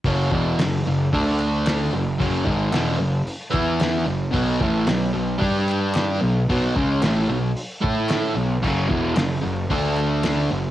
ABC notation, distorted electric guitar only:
X:1
M:4/4
L:1/8
Q:1/4=112
K:F#m
V:1 name="Distorted electric guitar" clef=bass
[F,,C,F,] [E,,B,,E,] [F,,C,] [F,,C,] [D,A,D]3 [F,,C,] | [F,,C,F,] [G,,^D,G,] [E,,B,,E,] [F,,C,] z [E,B,E]2 [F,,C,] | [B,,F,B,] [A,,E,A,] [B,,F,] [B,,F,] [=G,D=G]3 [B,,F,] | [B,,F,B,] [C,G,C] [A,,E,A,] [B,,F,] z [A,EA]2 [B,,F,] |
[F,,C,F,] [E,,B,,E,] [F,,C,] [F,,C,] [D,A,D]3 [F,,C,] |]